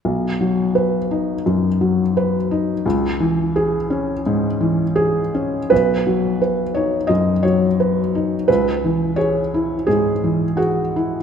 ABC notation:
X:1
M:4/4
L:1/8
Q:1/4=86
K:Bmix
V:1 name="Felt piano"
z8 | z6 G2 | B3 c d c3 | B2 c2 G2 F2 |]
V:2 name="Felt piano" clef=bass
B,,, F, B D F,, F, B D | C,, E, G C G,, E,2 C | B,,, F, B D F,, F, B D | C,, E, G E G,, E, G E |]